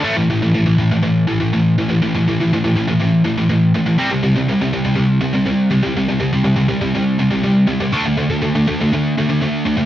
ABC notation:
X:1
M:4/4
L:1/16
Q:1/4=122
K:Ador
V:1 name="Distorted electric guitar" clef=bass
[A,,E,A,] [A,,E,] [A,,E,] [A,,E,] [A,,E,] [A,,E,] [A,,E,] [A,,E,] [A,,E,]2 [A,,E,] [A,,E,] [A,,E,]2 [A,,E,] [A,,E,] | [A,,E,] [A,,E,] [A,,E,] [A,,E,] [A,,E,] [A,,E,] [A,,E,] [A,,E,] [A,,E,]2 [A,,E,] [A,,E,] [A,,E,]2 [A,,E,] [A,,E,] | [C,G,C] [C,G,] [C,G,] [C,G,] [C,G,] [C,G,] [C,G,] [C,G,] [C,G,]2 [C,G,] [C,G,] [C,G,]2 [C,G,] [C,G,] | [C,G,] [C,G,] [C,G,] [C,G,] [C,G,] [C,G,] [C,G,] [C,G,] [C,G,]2 [C,G,] [C,G,] [C,G,]2 [C,G,] [C,G,] |
[D,A,D] [D,A,] [D,A,] [D,A,] [D,A,] [D,A,] [D,A,] [D,A,] [D,A,]2 [D,A,] [D,A,] [D,A,]2 [D,A,] [D,A,] |]